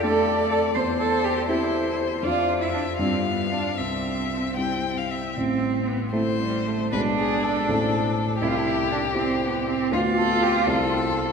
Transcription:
Already playing: F2
0.03 A3 D4 A4 D5
0.51 A4
0.75 E2 C5
0.99 A4
1.24 G4
1.47 C4 E4 G4 C5
2.23 F2 C4 D4 F4 D5
2.61 E4 E5
2.74 D4
2.98 G2 G3 C4 D4 F4 F5
3.25 B3
3.52 D4
3.78 C2 C4 E5
4.56 G3 C4 E4 G5
4.97 F5
5.10 E5
5.35 A1 C4
5.88 B3
6.12 A3 C4 E4 C5
6.39 G3
6.67 A3
6.92 B1 G#3 B3 D4 G#4 B4
7.18 G#4
7.43 A4
7.68 A1 C4 E4 A4
8.41 C2 E4 G4
8.49 F4
8.55 E4
8.91 D4
9.14 C4 E4 G4
9.42 B3
9.68 C4
9.91 D2 B3 D4 F4
10.17 A4
10.42 G4
10.66 C2 C4 E4 G4 A4

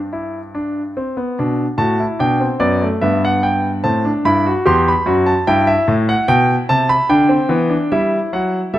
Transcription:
Already playing: G2 G5
0.13 E4
0.55 D4
0.97 C4
1.17 B3
1.39 B2 D4
1.78 A2 F#4 A5
2.00 E4
2.19 B2 D4 G5
2.40 C4
2.60 F#2 B3 D5
2.82 A3
3.01 G2 B3 E5
3.25 F#5
3.43 G5
3.84 A2 C4 A5
4.05 D4
4.25 G2 E4 B5
4.46 F#4
4.66 E2 G4 C6
4.88 B5
5.06 F#2 F#4
5.26 A5
5.47 G2 E4 G5
5.67 E5
5.88 A2
6.09 F#5
6.28 B2 G5
6.69 C3 A5
6.89 B5
7.09 D3 D4 G5
7.29 C4
7.49 E3 B3
7.70 D4
7.92 G3 E4 E5
8.33 F#3 F#5
8.74 G3 A4 E5

